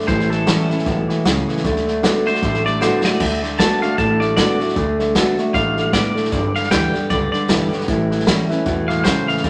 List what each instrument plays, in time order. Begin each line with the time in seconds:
0.00 snare
0.08 upright bass A1, clean electric guitar A2 E3 C5, steel-string acoustic guitar A2, kick, snare
0.20 snare
0.30 clean electric guitar A2 E3 A4, snare
0.47 clean electric guitar A2 F#3, steel-string acoustic guitar E3 G3 C#4 E4, snare, hi-hat pedal
0.69 clean electric guitar A2 E3, steel-string acoustic guitar C#4 E4, muted upright bass stroke, snare
0.78 snare
0.86 upright bass B1, clean electric guitar A2 E3, steel-string acoustic guitar B2, kick, snare
1.09 clean electric guitar A2 E3, muted upright bass stroke, snare
1.25 upright bass C#2, clean electric guitar A2 F#3, steel-string acoustic guitar C#3, snare, hi-hat pedal
1.48 clean electric guitar A2 E3, snare
1.57 snare
1.64 upright bass D2, clean electric guitar D3 A3, steel-string acoustic guitar D3, kick, snare
1.76 snare
1.87 clean electric guitar D3 A3, snare
2.03 clean electric guitar D3 B3, steel-string acoustic guitar D3 A3 D4 F#4, snare, hi-hat pedal
2.26 clean electric guitar D3 A3 C5, steel-string acoustic guitar D4 F#4, snare
2.35 snare
2.42 upright bass A1, steel-string acoustic guitar A2, clean electric guitar D3 A3, kick, snare
2.54 snare
2.65 clean electric guitar D3 A3 D5, snare
2.81 steel-string acoustic guitar D3 A3 D4 F#4, clean electric guitar D3 B3 C5, snare, hi-hat pedal
3.03 clean electric guitar D3 A3 D5, steel-string acoustic guitar D4 F#4, muted upright bass stroke, snare
3.20 upright bass D2, clean electric guitar D3 A3, steel-string acoustic guitar D3, kick, snare, crash
3.43 clean electric guitar D3 A3, snare
3.58 steel-string acoustic guitar D3 A3 D4 F#4, clean electric guitar D3 B3 A5, kick, snare, hi-hat pedal
3.81 clean electric guitar D3 A3 F5, steel-string acoustic guitar D4 F#4, muted upright bass stroke, snare
3.97 upright bass A1, steel-string acoustic guitar A2, clean electric guitar D3 A3 A5, kick, snare
4.20 clean electric guitar D3 A3 D5, snare
4.37 clean electric guitar D3 B3 D5, steel-string acoustic guitar D3 A3 D4 F#4, kick, snare, hi-hat pedal
4.60 clean electric guitar D3 A3, steel-string acoustic guitar D4 F#4, muted upright bass stroke, snare
4.68 snare
4.76 upright bass D2, clean electric guitar D3 A3, steel-string acoustic guitar D3, kick, snare
4.99 clean electric guitar D3 A3, snare
5.15 steel-string acoustic guitar D3 A3 D4 F#4, clean electric guitar D3 B3, kick, snare, hi-hat pedal
5.38 clean electric guitar D3 A3, steel-string acoustic guitar D4 F#4, muted upright bass stroke, snare
5.54 upright bass A1, steel-string acoustic guitar B2, clean electric guitar D3 A3 F5, kick, snare
5.77 clean electric guitar D3 A3, snare
5.93 steel-string acoustic guitar A2, clean electric guitar D3 B3 D5, kick, snare, hi-hat pedal
6.15 clean electric guitar D3 A3, muted upright bass stroke, snare
6.24 snare
6.31 upright bass G1, clean electric guitar G2 D3, steel-string acoustic guitar G2, kick, snare
6.54 clean electric guitar G2 D3 F5, snare
6.63 snare
6.71 upright bass D2, clean electric guitar G2 E3 G5, steel-string acoustic guitar D3 G3 B3 G4, kick, snare, hi-hat pedal
6.93 clean electric guitar G2 D3, steel-string acoustic guitar B3 G4, muted upright bass stroke, snare
7.10 upright bass C#2, clean electric guitar G2 D3 D5, steel-string acoustic guitar D3, kick, snare
7.32 clean electric guitar G2 D3 D5, muted upright bass stroke, snare
7.48 upright bass B1, clean electric guitar G2 E3, steel-string acoustic guitar D3 G3 B3 G4, kick, snare, hi-hat pedal
7.71 clean electric guitar G2 D3, steel-string acoustic guitar B3 G4, snare
7.80 snare
7.88 upright bass A1, clean electric guitar A2 E3, steel-string acoustic guitar A2, kick, snare
8.11 clean electric guitar A2 E3, snare
8.19 snare
8.26 clean electric guitar A2 F#3, steel-string acoustic guitar E3 G3 C#4 E4, kick, snare, hi-hat pedal
8.49 clean electric guitar A2 E3, steel-string acoustic guitar C#4 E4, muted upright bass stroke, snare
8.66 upright bass E2, clean electric guitar A2 E3, steel-string acoustic guitar B2, kick, snare
8.88 clean electric guitar A2 E3 F5, snare
9.04 clean electric guitar A2 F#3 C5, steel-string acoustic guitar C#3, kick, snare, hi-hat pedal
9.28 clean electric guitar A2 E3 F5, muted upright bass stroke, snare
9.36 snare
9.44 upright bass D2, clean electric guitar D3 A3, steel-string acoustic guitar D3, kick, snare